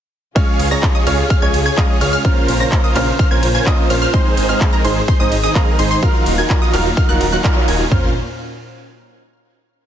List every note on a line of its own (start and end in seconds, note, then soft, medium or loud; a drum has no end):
0.35 4.10 C#3 medium
0.35 0.68 G#3 loud
0.35 0.68 C#4 medium
0.35 2.23 C#4 medium
0.35 2.23 F4 medium
0.35 0.69 F4 medium
0.35 2.23 G#4 medium
0.35 0.69 G#4 medium
0.35 0.68 C#5 medium
0.35 0.69 C#5 loud
0.35 0.68 F5 medium
0.35 0.68 F6 medium
0.35 kick loud
0.35 ride medium
0.60 0.75 C#2 loud
0.60 open hi-hat loud
0.60 ride medium
0.70 1.03 G#3 medium
0.70 1.04 C#4 medium
0.70 1.04 F4 medium
0.70 0.92 G#4 medium
0.70 0.92 C#5 medium
0.70 1.04 C#5 medium
0.70 0.92 A#5 medium
0.70 0.92 A#6 medium
0.83 kick loud
0.83 clap loud
0.83 ride medium
0.95 1.05 G#4 medium
0.95 1.05 C#5 medium
0.95 1.05 D#5 medium
0.95 1.05 D#6 medium
1.06 1.22 C#2 medium
1.06 1.19 G#3 medium
1.06 1.19 C#4 medium
1.06 1.19 F4 medium
1.06 1.24 G#4 medium
1.06 1.23 C#5 medium
1.06 1.19 C#5 loud
1.06 1.24 F5 loud
1.06 1.23 F6 loud
1.06 open hi-hat medium
1.06 ride medium
1.30 1.39 G#4 medium
1.30 1.39 C#5 medium
1.30 1.39 F5 loud
1.30 1.39 F6 loud
1.30 kick loud
1.30 ride medium
1.42 1.50 C#2 medium
1.42 1.54 G#3 medium
1.42 1.54 C#4 medium
1.42 1.54 F4 medium
1.42 1.59 G#4 medium
1.42 1.59 C#5 medium
1.42 1.55 C#5 loud
1.42 1.59 G#5 loud
1.42 1.59 G#6 loud
1.54 1.69 C#2 medium
1.54 open hi-hat loud
1.54 ride medium
1.66 1.76 G#4 medium
1.66 1.76 C#5 medium
1.66 1.76 G#5 loud
1.66 1.76 G#6 loud
1.77 1.98 G#3 medium
1.77 1.98 C#4 medium
1.77 1.98 F4 medium
1.77 1.98 G#4 medium
1.77 1.98 C#5 medium
1.77 1.98 D#5 medium
1.77 1.99 F5 loud
1.77 1.98 D#6 loud
1.77 kick loud
1.77 clap loud
1.77 ride medium
2.01 2.17 C#2 loud
2.01 2.22 G#3 medium
2.01 2.22 C#4 medium
2.01 2.22 F4 medium
2.01 2.11 G#4 medium
2.01 2.11 C#5 medium
2.01 2.22 C#5 medium
2.01 2.11 F5 loud
2.01 2.11 F6 loud
2.01 open hi-hat medium
2.01 ride medium
2.13 2.22 G#4 loud
2.13 2.22 C#5 loud
2.13 2.22 F5 loud
2.13 2.22 F6 loud
2.24 2.57 A#3 loud
2.24 4.12 A#3 medium
2.24 2.57 C#4 medium
2.24 2.57 F4 medium
2.24 2.57 A#4 medium
2.24 2.57 C5 medium
2.24 5.99 C5 medium
2.24 2.58 C5 loud
2.24 2.57 F5 medium
2.24 2.57 F6 medium
2.24 kick loud
2.24 ride medium
2.48 2.64 A#1 loud
2.48 open hi-hat loud
2.48 ride medium
2.60 2.92 A#3 medium
2.60 2.93 C#4 medium
2.60 2.81 C#4 medium
2.60 2.81 F4 medium
2.60 2.93 F4 medium
2.60 2.81 A#4 medium
2.60 2.81 C5 medium
2.60 2.93 C5 loud
2.60 2.81 A#5 medium
2.60 2.81 A#6 medium
2.72 kick loud
2.72 clap loud
2.72 ride medium
2.84 2.94 C#4 medium
2.84 2.94 F4 medium
2.84 2.94 A#4 medium
2.84 2.94 C5 medium
2.84 2.94 D#5 medium
2.84 2.94 D#6 medium
2.95 3.11 A#1 medium
2.95 3.08 A#3 medium
2.95 3.08 C#4 medium
2.95 3.12 C#4 medium
2.95 3.12 F4 medium
2.95 3.08 F4 medium
2.95 3.12 A#4 medium
2.95 3.12 C5 medium
2.95 3.08 C5 loud
2.95 3.12 F5 loud
2.95 3.13 F6 loud
2.95 clap medium
2.95 open hi-hat medium
2.95 ride medium
3.19 3.28 C#4 loud
3.19 3.28 F4 medium
3.19 3.28 A#4 medium
3.19 3.28 C5 medium
3.19 3.28 F5 loud
3.19 3.28 F6 loud
3.19 kick loud
3.19 ride medium
3.31 3.39 A#1 medium
3.31 3.43 A#3 loud
3.31 3.43 C#4 medium
3.31 3.48 C#4 medium
3.31 3.48 F4 medium
3.31 3.43 F4 medium
3.31 3.48 A#4 medium
3.31 3.48 C5 medium
3.31 3.44 C5 loud
3.31 3.48 G#5 loud
3.31 3.48 G#6 loud
3.43 3.58 A#1 medium
3.43 open hi-hat loud
3.43 ride medium
3.55 3.65 C#4 medium
3.55 3.65 F4 medium
3.55 3.65 A#4 medium
3.55 3.65 C5 medium
3.55 3.65 G#5 loud
3.55 3.65 G#6 loud
3.66 3.87 A#3 medium
3.66 3.87 C#4 medium
3.66 3.87 F4 medium
3.66 3.87 A#4 medium
3.66 3.87 C5 medium
3.66 3.87 D#5 medium
3.66 3.88 D#5 medium
3.66 3.87 D#6 loud
3.66 kick loud
3.66 clap loud
3.66 ride medium
3.90 4.06 A#1 medium
3.90 4.11 A#3 medium
3.90 4.11 C#4 medium
3.90 4.00 C#4 medium
3.90 4.00 F4 medium
3.90 4.11 F4 medium
3.90 4.00 A#4 medium
3.90 4.00 C5 medium
3.90 4.11 C5 medium
3.90 4.00 F5 loud
3.90 4.00 F6 medium
3.90 open hi-hat loud
3.90 ride medium
4.02 4.11 C#4 loud
4.02 4.11 F4 medium
4.02 4.11 A#4 medium
4.02 4.11 C5 medium
4.02 4.11 F5 loud
4.02 4.11 F6 loud
4.13 7.88 D#3 medium
4.13 4.46 G#3 loud
4.13 6.01 G#3 medium
4.13 4.46 C4 medium
4.13 4.46 D#4 medium
4.13 4.46 G#4 medium
4.13 4.46 C5 medium
4.13 4.47 C5 loud
4.13 4.46 C6 medium
4.13 kick loud
4.13 ride medium
4.37 4.53 G#1 loud
4.37 open hi-hat loud
4.37 ride medium
4.49 4.81 G#3 medium
4.49 4.82 C4 medium
4.49 4.70 D#4 medium
4.49 4.82 D#4 medium
4.49 4.70 G#4 medium
4.49 4.82 C5 medium
4.49 4.70 F5 medium
4.49 4.70 F6 loud
4.61 kick loud
4.61 clap loud
4.61 ride medium
4.73 4.83 D#4 medium
4.73 4.83 G#4 medium
4.73 4.83 A#4 medium
4.73 4.83 A#5 medium
4.84 5.00 G#1 medium
4.84 4.96 G#3 medium
4.84 4.97 C4 medium
4.84 5.01 D#4 medium
4.84 4.97 D#4 medium
4.84 5.01 G#4 medium
4.84 5.01 C5 loud
4.84 4.97 C5 loud
4.84 5.01 C6 loud
4.84 open hi-hat loud
4.84 ride medium
5.08 5.17 D#4 loud
5.08 5.17 G#4 medium
5.08 5.17 C5 loud
5.08 5.17 C6 loud
5.08 kick loud
5.08 ride medium
5.19 5.28 G#1 medium
5.19 5.32 G#3 medium
5.19 5.32 C4 medium
5.19 5.37 D#4 medium
5.19 5.32 D#4 medium
5.19 5.37 G#4 medium
5.19 5.32 C5 loud
5.19 5.37 D#5 loud
5.19 5.37 D#6 loud
5.32 5.47 G#1 medium
5.32 open hi-hat loud
5.32 ride medium
5.44 5.54 D#4 medium
5.44 5.54 G#4 medium
5.44 5.54 D#5 loud
5.44 5.54 D#6 loud
5.55 5.76 G#3 medium
5.55 5.76 C4 medium
5.55 5.76 D#4 medium
5.55 5.76 G#4 medium
5.55 5.76 A#4 loud
5.55 5.77 F5 loud
5.55 5.76 A#5 loud
5.55 kick loud
5.55 clap loud
5.55 ride medium
5.78 5.95 G#1 loud
5.78 6.00 G#3 medium
5.78 6.00 C4 medium
5.78 5.89 D#4 medium
5.78 6.00 D#4 medium
5.78 5.89 G#4 medium
5.78 5.89 C5 loud
5.78 6.00 C5 medium
5.78 5.89 C6 loud
5.78 open hi-hat loud
5.78 ride medium
5.91 6.00 D#4 loud
5.91 6.00 G#4 medium
5.91 6.00 C5 loud
5.91 6.00 C6 loud
6.02 6.35 F#3 loud
6.02 7.90 F#3 loud
6.02 7.90 A#3 medium
6.02 6.35 D#4 medium
6.02 6.35 F4 medium
6.02 6.35 F#4 medium
6.02 6.35 A#4 medium
6.02 6.36 A#4 loud
6.02 6.35 F5 medium
6.02 7.90 F5 medium
6.02 6.35 F5 medium
6.02 6.35 F6 loud
6.02 kick loud
6.02 ride medium
6.26 6.42 D#1 loud
6.26 open hi-hat loud
6.26 ride medium
6.37 6.70 F#3 medium
6.37 6.71 D#4 medium
6.37 6.59 D#4 medium
6.37 6.71 F4 medium
6.37 6.59 F4 medium
6.37 6.59 F#4 medium
6.37 6.59 A#4 medium
6.37 6.71 A#4 loud
6.37 6.59 G#5 medium
6.37 6.59 G#6 medium
6.50 kick loud
6.50 clap loud
6.50 ride medium
6.62 6.72 D#4 medium
6.62 6.72 F4 medium
6.62 6.72 F#4 medium
6.62 6.72 A#4 medium
6.62 6.72 D#5 medium
6.62 6.72 D#6 medium
6.73 6.89 D#1 medium
6.73 6.85 F#3 loud
6.73 6.86 D#4 medium
6.73 6.90 D#4 medium
6.73 6.90 F4 medium
6.73 6.86 F4 medium
6.73 6.90 F#4 medium
6.73 6.90 A#4 medium
6.73 6.86 A#4 loud
6.73 6.90 F5 loud
6.73 6.90 F6 loud
6.73 clap medium
6.73 open hi-hat medium
6.73 ride medium
6.97 7.06 D#4 loud
6.97 7.06 F4 medium
6.97 7.06 F#4 medium
6.97 7.06 A#4 medium
6.97 7.06 F5 loud
6.97 7.06 F6 loud
6.97 kick loud
6.97 ride medium
7.08 7.17 D#1 medium
7.08 7.18 F#3 loud
7.08 7.18 D#4 medium
7.08 7.26 D#4 medium
7.08 7.26 F4 medium
7.08 7.19 F4 medium
7.08 7.26 F#4 medium
7.08 7.26 A#4 medium
7.08 7.19 A#4 loud
7.08 7.26 F#5 loud
7.08 7.26 F#6 loud
7.20 7.36 D#1 medium
7.20 7.29 F#3 medium
7.20 7.30 D#4 medium
7.20 7.30 F4 medium
7.20 7.30 A#4 loud
7.20 open hi-hat loud
7.20 ride medium
7.32 7.53 F#3 medium
7.32 7.53 D#4 medium
7.32 7.42 D#4 medium
7.32 7.42 F4 medium
7.32 7.54 F4 medium
7.32 7.42 F#4 medium
7.32 7.42 A#4 medium
7.32 7.54 A#4 medium
7.32 7.42 F#5 medium
7.32 7.42 F#6 medium
7.44 7.65 D#4 medium
7.44 7.65 F4 medium
7.44 7.65 F#4 medium
7.44 7.65 A#4 medium
7.44 7.65 F5 loud
7.44 7.65 F6 loud
7.44 kick loud
7.44 clap loud
7.44 ride medium
7.56 7.68 F#3 medium
7.56 7.68 D#4 medium
7.56 7.68 F4 medium
7.56 7.69 C#5 medium
7.68 7.84 D#1 loud
7.68 7.85 D#4 medium
7.68 7.85 F4 medium
7.68 7.85 F#4 medium
7.68 7.85 A#4 medium
7.68 7.85 G#5 medium
7.68 7.85 G#6 medium
7.68 open hi-hat loud
7.68 ride medium
7.90 8.14 A#1 loud
7.90 8.14 A#2 medium
7.90 8.08 A#3 medium
7.90 8.14 A#3 medium
7.90 8.09 C#4 medium
7.90 8.14 C#4 medium
7.90 8.09 C#4 medium
7.90 8.09 F4 medium
7.90 8.10 F4 medium
7.90 8.09 A#4 medium
7.90 8.14 C5 medium
7.90 8.09 C5 medium
7.90 8.10 C5 medium
7.90 8.09 F5 medium
7.90 8.09 F6 medium
7.90 kick loud
7.90 floor tom loud